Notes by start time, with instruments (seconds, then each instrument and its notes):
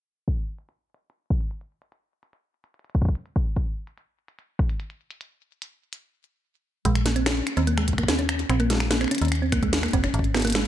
0.28 kick, closed hi-hat
0.58 closed hi-hat
0.69 closed hi-hat
0.94 closed hi-hat
1.10 closed hi-hat
1.30 kick
1.41 closed hi-hat
1.51 closed hi-hat
1.61 closed hi-hat
1.82 closed hi-hat
1.92 closed hi-hat
2.23 closed hi-hat
2.33 closed hi-hat
2.64 closed hi-hat
2.74 closed hi-hat
2.79 closed hi-hat
2.84 closed hi-hat
2.90 closed hi-hat
2.95 kick
3.02 kick
3.05 kick, closed hi-hat
3.08 kick
3.15 closed hi-hat
3.26 closed hi-hat
3.36 kick
3.56 kick, closed hi-hat
3.87 closed hi-hat
3.98 closed hi-hat
4.28 closed hi-hat
4.39 closed hi-hat
4.59 kick
4.69 closed hi-hat
4.80 closed hi-hat
4.90 closed hi-hat
5.11 closed hi-hat
5.21 closed hi-hat
5.62 closed hi-hat
5.93 closed hi-hat
6.85 fm bass A#1, synth arpeggio sound G#3, kick, closed hi-hat
6.95 finger snap, closed hi-hat
7.06 synth arpeggio sound A#3, snare, closed hi-hat
7.16 synth arpeggio sound C4, closed hi-hat
7.26 synth arpeggio sound C#4, finger snap, snare, closed hi-hat
7.47 finger snap, closed hi-hat
7.57 fm bass D#2, synth arpeggio sound C4, closed hi-hat
7.67 synth arpeggio sound A#3, closed hi-hat
7.78 synth arpeggio sound G#3, finger snap, closed hi-hat
7.88 kick, closed hi-hat
7.93 kick
7.98 synth arpeggio sound A#3, finger snap, kick, closed hi-hat
8.03 kick
8.08 synth arpeggio sound C4, snare, closed hi-hat
8.19 synth arpeggio sound C#4, closed hi-hat
8.29 finger snap, closed hi-hat
8.39 closed hi-hat
8.50 fm bass A#1, synth arpeggio sound C4, finger snap, closed hi-hat
8.60 synth arpeggio sound A#3, closed hi-hat
8.70 synth arpeggio sound G#3, snare, closed hi-hat
8.73 snare
8.75 snare
8.78 finger snap, snare
8.80 snare, closed hi-hat
8.83 snare
8.86 snare
8.88 synth arpeggio sound A#3, snare
8.91 snare, closed hi-hat
9.01 synth arpeggio sound C4, finger snap, closed hi-hat
9.04 finger snap
9.08 synth arpeggio sound C#4, finger snap
9.11 finger snap, closed hi-hat
9.15 finger snap, closed hi-hat
9.18 fm bass D#2, finger snap, closed hi-hat
9.22 closed hi-hat
9.25 closed hi-hat
9.28 finger snap, closed hi-hat
9.32 closed hi-hat
9.35 closed hi-hat
9.42 synth arpeggio sound C4
9.52 synth arpeggio sound A#3, finger snap, kick, closed hi-hat
9.63 synth arpeggio sound G#3, kick, closed hi-hat
9.73 snare, closed hi-hat
9.83 synth arpeggio sound A#3, finger snap, closed hi-hat
9.86 closed hi-hat
9.88 closed hi-hat
9.91 synth arpeggio sound C4, kick, closed hi-hat
9.93 fm bass F1, closed hi-hat
10.04 synth arpeggio sound C#4, finger snap, closed hi-hat
10.14 fm bass G#1, closed hi-hat
10.19 kick
10.24 closed hi-hat
10.35 synth arpeggio sound B3, finger snap, snare, closed hi-hat
10.37 snare, closed hi-hat
10.40 snare, closed hi-hat
10.42 synth arpeggio sound A#3, snare, closed hi-hat
10.45 snare, closed hi-hat
10.47 snare, closed hi-hat
10.50 snare, closed hi-hat
10.52 synth arpeggio sound G#3, finger snap, snare, closed hi-hat
10.55 snare